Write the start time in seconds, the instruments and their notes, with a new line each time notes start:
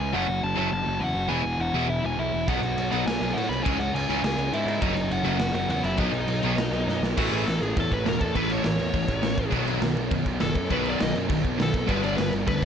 Already playing: distorted electric guitar C#3 G#3 C#4, lead electric guitar G#4 G#5
0.00 picked electric bass C#2
0.12 picked electric bass F#1, distorted electric guitar F#2 C#3 F#3 A3 C#4, lead electric guitar F#4 F#5
0.28 picked electric bass F#1
0.43 picked electric bass F#1, lead electric guitar A4 A5
0.55 picked electric bass F#1, distorted electric guitar F#2 C#3 F#3 A3 C#4, lead electric guitar A4 A5
0.72 picked electric bass F#1, lead electric guitar A4 A5
0.83 picked electric bass F#1, distorted electric guitar F#2 C#3 F#3
1.00 picked electric bass E2, distorted electric guitar F#2 C#3 F#3, lead electric guitar F#4 F#5
1.15 picked electric bass F#1
1.28 picked electric bass E1, distorted electric guitar E2 B2 E3 G#3 B3 E4, lead electric guitar G#4 G#5
1.44 picked electric bass E1
1.59 picked electric bass E1, lead electric guitar F#4 F#5
1.74 picked electric bass E1, distorted electric guitar E3 G#3 B3 E4
1.88 picked electric bass E1, lead electric guitar E4 E5
2.02 picked electric bass E1, distorted electric guitar E2 B2 E3, lead electric guitar G#4 G#5
2.15 picked electric bass B1, distorted electric guitar E2 B2 E3, lead electric guitar E5
2.20 lead electric guitar E4
2.34 picked electric bass E1
2.46 picked electric bass B1, distorted electric guitar B2 F#3 B3 D#4, lead electric guitar F#4 F#5, kick, crash
2.62 picked electric bass B1, crash
2.77 picked electric bass B1, crash
2.91 picked electric bass B1, distorted electric guitar B2 F#3 B3 D#4, lead electric guitar F#4 F#5, crash
3.06 picked electric bass B1, lead electric guitar G#4 G#5, snare, crash
3.20 picked electric bass B1, distorted electric guitar B2 F#3 B3, crash
3.33 picked electric bass A2, distorted electric guitar B2 F#3 B3, lead electric guitar F#4 F#5
3.38 crash
3.49 picked electric bass C2, lead electric guitar B4 B5, crash
3.63 picked electric bass C#2, distorted electric guitar C#3 E3 G#3 C#4, lead electric guitar G#4 G#5, kick
3.67 crash
3.78 picked electric bass C#2, lead electric guitar F#4 F#5, crash
3.94 picked electric bass C#2, lead electric guitar G#4 G#5, crash
4.09 picked electric bass C#2, distorted electric guitar C#3 E3 G#3 C#4, crash
4.24 picked electric bass C#2, lead electric guitar G#4 G#5, snare, crash
4.37 picked electric bass C#2, distorted electric guitar C#3 G#3 C#4, crash
4.51 picked electric bass G#2, distorted electric guitar C#3 G#3 C#4, lead electric guitar E4 E5, crash
4.66 picked electric bass G#2, crash
4.79 picked electric bass F#1, distorted electric guitar F#2 C#3 F#3 A3, lead electric guitar D#4 D#5, kick, crash
4.83 distorted electric guitar C#4
4.96 picked electric bass F#1, crash
5.10 picked electric bass F#1, lead electric guitar F#4 F#5, crash
5.24 picked electric bass F#1, distorted electric guitar F#2 C#3 F#3 A3 C#4, lead electric guitar F#4 F#5, crash
5.39 picked electric bass F#1, snare, crash
5.54 picked electric bass F#1, distorted electric guitar F#2 C#3 F#3, lead electric guitar F#4 F#5, crash
5.68 picked electric bass E2, distorted electric guitar F#2 C#3 F#3, lead electric guitar F#4 F#5, crash
5.83 picked electric bass F#1, lead electric guitar E4 E5, crash
5.96 picked electric bass B1, distorted electric guitar B2 F#3 B3 D#4, lead electric guitar D#4 D#5, kick, crash
6.12 picked electric bass B1, crash
6.28 picked electric bass B1, crash
6.43 picked electric bass B1, distorted electric guitar B2 F#3 B3 D#4, crash
6.57 picked electric bass B1, snare, crash
6.70 picked electric bass B1, distorted electric guitar B2 F#3 B3, crash
6.84 picked electric bass F#2, distorted electric guitar B2 F#3 B3
6.89 snare
7.02 picked electric bass B1, snare
7.16 picked electric bass A1, distorted electric guitar A2 E3 A3, lead electric guitar F#4, kick, crash
7.31 picked electric bass A1, lead electric guitar G#4, crash
7.46 picked electric bass A1, distorted electric guitar A2 E3, lead electric guitar A4, snare, crash
7.61 picked electric bass A1, lead electric guitar G#4, crash
7.74 picked electric bass E2, distorted electric guitar A2 E3 A3, kick, crash
7.80 lead electric guitar A4
7.92 picked electric bass A1, lead electric guitar B4, kick, crash
8.06 picked electric bass E1, distorted electric guitar A2 E3, lead electric guitar A#4, snare, crash
8.21 picked electric bass E2, lead electric guitar A4, kick, crash
8.33 picked electric bass A1, distorted electric guitar A2 E3 A3, lead electric guitar B4, kick, crash
8.50 lead electric guitar C#5, crash
8.64 picked electric bass A1, distorted electric guitar A2 E3, lead electric guitar C#5, snare, crash
8.79 picked electric bass E2, crash
8.92 picked electric bass A1, distorted electric guitar A2 E3 A3, kick, crash
9.08 picked electric bass A1, kick, crash
9.22 picked electric bass A1, distorted electric guitar A2 E3, snare, crash
9.38 kick, crash
9.50 picked electric bass B1, distorted electric guitar B2 D#3 F#3 B3, kick, crash
9.67 picked electric bass B1, crash
9.81 picked electric bass B1, distorted electric guitar B2 D#3, snare, crash
9.96 picked electric bass B1, crash
10.10 picked electric bass F#2, distorted electric guitar B2 D#3 F#3 B3, kick, crash
10.26 picked electric bass B1, kick, crash
10.40 picked electric bass F#1, distorted electric guitar B2 D#3, lead electric guitar A4, snare, crash
10.55 picked electric bass F#2, kick, crash
10.68 picked electric bass B1, distorted electric guitar B2 D#3 F#3 B3, kick, crash
10.72 lead electric guitar B4
10.85 lead electric guitar D5, crash
10.99 picked electric bass B1, distorted electric guitar B2 D#3, lead electric guitar D#5, snare, crash
11.15 picked electric bass F#2, crash
11.27 picked electric bass B1, distorted electric guitar B2 D#3 F#3 B3, kick, crash
11.44 picked electric bass B1, kick, crash
11.58 picked electric bass B1, distorted electric guitar B2 D#3, snare, crash
11.62 lead electric guitar A4
11.74 kick, crash
11.87 picked electric bass G1, distorted electric guitar G2 D3 G3, lead electric guitar B4, kick, crash
12.04 picked electric bass G1, lead electric guitar D5, crash
12.17 picked electric bass G1, distorted electric guitar G2 D3, lead electric guitar B4, snare, crash
12.33 picked electric bass G1, crash
12.46 picked electric bass D2, distorted electric guitar G2 D3 G3, lead electric guitar B4, kick, crash